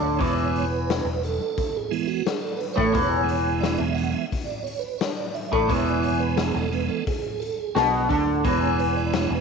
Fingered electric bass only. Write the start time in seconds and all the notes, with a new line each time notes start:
Already playing: D2
0.20 E1
1.05 E1
2.77 A1
2.95 E1
3.80 E1
5.53 A1
5.69 E1
6.55 E1
7.76 B1
8.10 D2
8.44 E1
9.31 E1